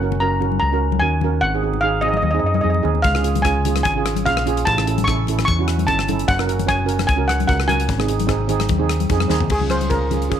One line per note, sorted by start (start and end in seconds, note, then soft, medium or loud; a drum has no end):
0.00 0.58 F#1 loud
0.00 0.14 C#4 medium
0.00 0.15 F#4 medium
0.00 0.15 A#4 medium
0.00 0.18 F#5 loud
0.12 high conga medium
0.12 low conga medium
0.20 0.34 C#4 medium
0.20 0.35 F#4 medium
0.20 0.35 A#4 medium
0.20 0.58 A#5 medium
0.40 0.59 C#4 medium
0.40 0.60 F#4 medium
0.40 0.60 A#4 medium
0.40 low conga medium
0.52 high conga medium
0.60 1.00 C#2 medium
0.60 1.03 A#5 medium
0.72 0.91 C#4 medium
0.72 0.91 F#4 medium
0.72 0.91 A#4 medium
0.92 high conga medium
1.00 1.39 D#2 medium
1.00 1.15 C#4 medium
1.00 1.15 F#4 medium
1.00 1.15 A#4 medium
1.00 1.43 G#5 loud
1.21 1.41 C#4 medium
1.21 1.42 F#4 medium
1.21 1.42 A#4 medium
1.21 high conga medium
1.21 low conga medium
1.41 2.19 G#1 loud
1.41 1.80 F#5 loud
1.54 1.59 C4 medium
1.54 1.60 D#4 medium
1.54 1.60 G#4 medium
1.62 1.76 C4 medium
1.62 1.76 D#4 medium
1.62 1.76 G#4 medium
1.73 low conga medium
1.81 1.96 C4 medium
1.81 1.96 D#4 medium
1.81 1.96 G#4 medium
1.81 2.01 F5 medium
2.01 2.22 C4 medium
2.01 2.22 D#4 medium
2.01 2.23 G#4 medium
2.01 2.07 D#5 medium
2.01 low conga medium
2.08 2.16 D#5 medium
2.14 2.22 D#5 medium
2.14 high conga medium
2.22 2.42 D#2 medium
2.22 2.30 D#5 medium
2.22 high conga medium
2.31 2.52 C4 medium
2.31 2.53 D#4 medium
2.31 2.53 G#4 medium
2.31 2.38 D#5 medium
2.39 2.62 F#2 medium
2.39 2.45 D#5 medium
2.46 2.54 D#5 medium
2.54 2.60 D#5 medium
2.54 high conga medium
2.61 2.83 F2 medium
2.61 2.76 C4 medium
2.61 2.76 D#4 medium
2.61 2.77 G#4 medium
2.61 2.69 D#5 medium
2.61 high conga medium
2.70 2.78 D#5 medium
2.74 high conga medium
2.83 3.03 D#2 medium
2.83 3.02 C4 medium
2.83 3.02 D#4 medium
2.83 3.02 G#4 medium
2.83 low conga medium
2.95 low conga medium
3.02 3.81 C#2 loud
3.02 3.41 F5 loud
3.02 kick loud
3.02 closed hi-hat medium
3.14 3.20 C#4 medium
3.14 3.21 F4 medium
3.14 3.21 G#4 medium
3.14 cross-stick medium
3.22 3.36 C#4 medium
3.22 3.37 F4 medium
3.22 3.37 G#4 medium
3.22 closed hi-hat medium
3.35 closed hi-hat medium
3.35 high conga medium
3.35 low conga medium
3.42 3.57 C#4 medium
3.42 3.58 F4 medium
3.42 3.58 G#4 medium
3.42 3.81 G#5 loud
3.42 kick medium
3.42 cross-stick medium
3.42 closed hi-hat medium
3.65 3.84 C#4 medium
3.65 3.84 F4 medium
3.65 3.84 G#4 medium
3.65 closed hi-hat medium
3.65 low conga medium
3.76 cross-stick medium
3.76 closed hi-hat medium
3.76 high conga medium
3.83 4.23 G#1 medium
3.83 4.22 G#5 loud
3.83 kick loud
3.83 closed hi-hat medium
3.96 4.14 C#4 medium
3.96 4.15 F4 medium
3.96 4.15 G#4 medium
4.06 cross-stick medium
4.06 closed hi-hat medium
4.16 closed hi-hat medium
4.16 high conga medium
4.25 4.64 A#1 medium
4.25 4.38 C#4 medium
4.25 4.38 F4 medium
4.25 4.39 G#4 medium
4.25 4.67 F5 medium
4.25 kick medium
4.25 closed hi-hat medium
4.37 cross-stick loud
4.46 4.64 C#4 medium
4.46 4.65 F4 medium
4.46 4.65 G#4 loud
4.46 closed hi-hat medium
4.46 low conga medium
4.57 closed hi-hat medium
4.65 5.44 A1 loud
4.65 5.07 A5 loud
4.65 kick loud
4.65 closed hi-hat medium
4.77 4.83 C#4 medium
4.77 4.83 E4 medium
4.77 4.83 A4 medium
4.77 cross-stick medium
4.86 4.99 C#4 medium
4.86 4.99 E4 medium
4.86 5.00 A4 medium
4.86 closed hi-hat medium
4.98 closed hi-hat medium
4.98 high conga medium
4.98 low conga medium
5.04 5.20 C#4 medium
5.04 5.20 E4 medium
5.04 5.44 C#6 loud
5.04 kick medium
5.04 cross-stick medium
5.04 closed hi-hat medium
5.09 5.20 A4 medium
5.27 5.46 C#4 medium
5.27 5.46 E4 medium
5.27 5.46 A4 medium
5.27 closed hi-hat medium
5.27 low conga medium
5.38 cross-stick medium
5.38 closed hi-hat medium
5.38 high conga medium
5.45 5.85 E2 medium
5.45 5.88 C#6 loud
5.45 kick loud
5.45 closed hi-hat medium
5.59 5.76 C#4 medium
5.59 5.77 E4 medium
5.59 5.77 F#4 medium
5.68 cross-stick medium
5.68 closed hi-hat medium
5.78 closed hi-hat medium
5.78 high conga medium
5.87 6.25 G1 medium
5.87 6.00 C#4 medium
5.87 6.01 E4 medium
5.87 6.01 A4 medium
5.87 6.25 A5 loud
5.87 kick medium
5.87 closed hi-hat medium
5.99 cross-stick medium
6.08 6.27 C#4 medium
6.08 6.27 E4 medium
6.08 6.27 A4 medium
6.08 closed hi-hat medium
6.08 high conga medium
6.08 low conga medium
6.19 closed hi-hat medium
6.28 7.05 F#1 loud
6.28 6.65 F#5 loud
6.28 kick loud
6.28 closed hi-hat medium
6.39 6.44 C#4 medium
6.39 6.44 F#4 medium
6.39 6.45 A#4 medium
6.39 cross-stick medium
6.46 6.60 C#4 medium
6.46 6.60 F#4 medium
6.46 6.60 A#4 medium
6.46 closed hi-hat medium
6.59 closed hi-hat medium
6.59 high conga medium
6.59 low conga medium
6.66 6.80 C#4 medium
6.66 6.80 F#4 medium
6.66 6.80 C#5 medium
6.66 7.06 G#5 loud
6.66 kick loud
6.66 cross-stick medium
6.66 closed hi-hat medium
6.85 7.05 C#4 medium
6.85 7.06 F#4 medium
6.85 7.06 A#4 medium
6.85 closed hi-hat medium
6.99 cross-stick medium
6.99 closed hi-hat medium
6.99 high conga medium
7.07 7.46 C#2 medium
7.07 7.27 G#5 loud
7.07 kick loud
7.07 closed hi-hat medium
7.16 7.36 C#4 medium
7.16 7.36 F#4 medium
7.16 7.37 A#4 medium
7.28 7.46 F#5 medium
7.28 cross-stick medium
7.28 closed hi-hat medium
7.40 closed hi-hat medium
7.40 high conga medium
7.47 7.86 C#2 medium
7.47 7.61 C#4 medium
7.47 7.61 F#4 medium
7.47 7.61 A#4 medium
7.47 7.69 F#5 loud
7.47 kick loud
7.47 closed hi-hat medium
7.60 cross-stick medium
7.67 7.87 C#4 medium
7.67 7.87 F#4 medium
7.67 7.87 A#4 medium
7.67 9.06 G#5 medium
7.67 closed hi-hat medium
7.67 high conga medium
7.67 low conga medium
7.80 closed hi-hat medium
7.89 8.66 G#1 loud
7.89 kick loud
7.89 closed hi-hat medium
7.98 8.05 C4 medium
7.98 8.05 D#4 medium
7.98 8.05 G#4 medium
7.98 cross-stick medium
8.07 8.21 C4 medium
8.07 8.21 D#4 medium
8.07 8.22 G#4 medium
8.07 closed hi-hat medium
8.19 closed hi-hat medium
8.19 high conga medium
8.27 8.41 C4 loud
8.27 8.41 D#4 medium
8.27 8.42 G#4 medium
8.27 kick medium
8.27 cross-stick medium
8.27 closed hi-hat medium
8.48 8.67 C4 medium
8.48 8.68 D#4 medium
8.48 8.68 G#4 medium
8.48 closed hi-hat medium
8.48 low conga medium
8.60 cross-stick medium
8.60 closed hi-hat medium
8.60 high conga medium
8.69 9.07 D#2 medium
8.69 kick loud
8.69 closed hi-hat medium
8.69 high conga medium
8.78 8.98 C4 medium
8.78 8.98 D#4 medium
8.78 8.98 G#4 medium
8.89 cross-stick medium
8.89 closed hi-hat medium
9.00 closed hi-hat medium
9.00 high conga medium
9.10 9.29 F2 medium
9.10 9.23 C4 medium
9.10 9.23 D#4 medium
9.10 9.24 G#4 loud
9.10 kick loud
9.10 closed hi-hat medium
9.20 cross-stick medium
9.20 high conga medium
9.28 9.49 D#2 medium
9.28 9.48 C4 loud
9.28 9.48 D#4 medium
9.28 9.49 G#4 loud
9.28 snare medium
9.28 low conga medium
9.40 floor tom medium
9.40 low conga medium
9.50 10.28 C#2 medium
9.50 9.70 G#4 medium
9.50 kick loud
9.50 crash medium
9.50 low conga medium
9.61 9.67 C#4 medium
9.61 9.68 F4 medium
9.61 9.68 G#4 medium
9.61 high conga medium
9.69 9.83 C#4 medium
9.69 9.83 F4 medium
9.69 9.84 G#4 medium
9.69 9.92 C5 medium
9.69 cross-stick medium
9.69 closed hi-hat medium
9.69 high conga medium
9.81 closed hi-hat medium
9.81 high conga medium
9.90 10.03 C#4 medium
9.90 10.04 F4 medium
9.90 10.04 G#4 medium
9.90 10.09 A#4 medium
9.90 kick medium
9.90 closed hi-hat medium
10.11 10.24 C#4 medium
10.11 10.24 F4 medium
10.11 10.25 G#4 medium
10.11 closed hi-hat medium
10.11 high conga medium
10.11 low conga medium
10.22 closed hi-hat medium
10.29 10.40 G#1 medium
10.29 10.40 C#4 medium
10.29 10.40 F4 medium
10.29 10.40 G#4 medium
10.29 kick loud
10.29 closed hi-hat soft